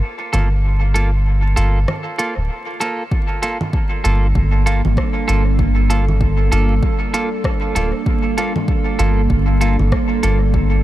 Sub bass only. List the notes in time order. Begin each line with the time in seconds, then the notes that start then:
0.34 G1
1.57 G1
2.37 D1
4.05 G1
4.35 G1
4.85 G1
5.29 G1
6.52 G1
7.75 D1
8.99 G1
9.30 G1
9.79 G1
10.23 G1